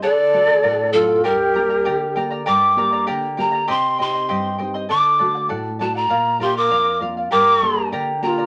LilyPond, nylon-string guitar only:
\new Staff \with { instrumentName = "Nylon-string guitar" } { \time 2/4 \key g \minor \tempo 4 = 99 d8 <a d' fis'>8 a,8 <fis a d'>8 | g,8 <bes d' g'>8 d8 <bes d' g'>8 | g,8 <bes d' g'>8 d8 <bes d' g'>8 | c8 <c' ees' g'>8 g,8 <c' ees' g'>8 |
d8 <a d' fis'>8 a,8 <a d' fis'>8 | bes,8 <bes d' f'>8 f,8 <bes d' f'>8 | g,8 <bes d' g'>8 d8 <bes d' g'>8 | }